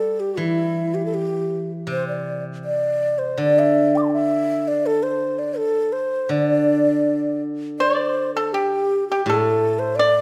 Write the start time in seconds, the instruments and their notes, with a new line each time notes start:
Already playing: guzheng G3, xiao A4
0.20 xiao G4
0.37 guzheng E3, xiao E4
0.94 xiao G4
1.05 xiao A4
1.14 xiao G4
1.87 guzheng C3
1.91 xiao C5
2.08 xiao D5
2.65 xiao D5
3.19 xiao C5
3.38 guzheng D3, xiao D5
3.59 xiao E5
3.95 xiao G5 D6
4.03 xiao A5 C6
4.08 xiao G5
4.13 xiao E5
4.68 xiao D5
4.86 xiao A4
5.03 xiao C5
5.39 xiao D5
5.57 xiao A4
5.93 xiao C5
6.29 guzheng D3, xiao D5
7.79 xiao D5, pipa D5
7.97 xiao C5
8.35 xiao A4, pipa A4
8.53 xiao G4, pipa G4
9.08 xiao G4, pipa G4
9.26 guzheng A2, xiao A4, pipa A4
9.79 xiao C5
9.96 xiao D5, pipa D5